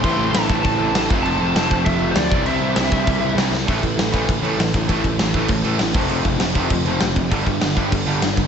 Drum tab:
CC |x-x-x-x-|x-x-x-x-|x-x-x-x-|xxxxxxxx|
SD |--o---o-|--o---o-|--o---oo|--o---o-|
BD |o--oo--o|---oo--o|---oo---|oo-oo--o|

CC |xxxxxxxx|xxxxxxxx|xxxxxxxx|
SD |--o---o-|--o---o-|--o---o-|
BD |oo-oo--o|-o-oo--o|oo-oo--o|